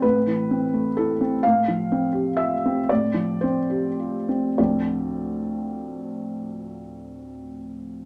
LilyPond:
\new Staff \with { instrumentName = "Felt piano" } { \time 3/4 \key d \dorian \tempo 4 = 108 << { b'2 a'8 r8 | f''2 e''4 | d''4 c''4. r8 | <d, a, f a c' d' d''>2.~ |
<d, a, f a c' d' d''>2. | } \\ { <a, c'>8 e8 c'8 a8 e'8 c'8 | a,8 f8 c'8 g'8 f'8 c'8 | a,8 f8 c'8 g'8 f'8 c'8 | r2. |
r2. | } >> }